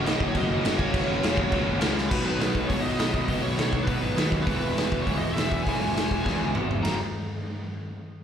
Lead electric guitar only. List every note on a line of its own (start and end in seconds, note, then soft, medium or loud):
0.05 0.26 D#5 loud
0.29 0.35 C#5 loud
0.37 0.78 D#5 loud
0.79 1.62 C#5 loud
2.09 2.24 B4 medium
2.25 2.66 B4 medium
2.68 2.81 C#5 medium
2.82 3.24 D#5 medium
3.25 3.42 D#5 medium
3.42 3.88 C#5 medium
3.83 4.27 B4 medium
4.43 4.56 B4 medium
4.57 5.05 B4 medium
5.01 5.17 C#5 medium
5.18 5.33 D#5 medium
5.33 5.65 E5 medium
5.62 6.49 G#5 medium
6.83 6.98 A#5 medium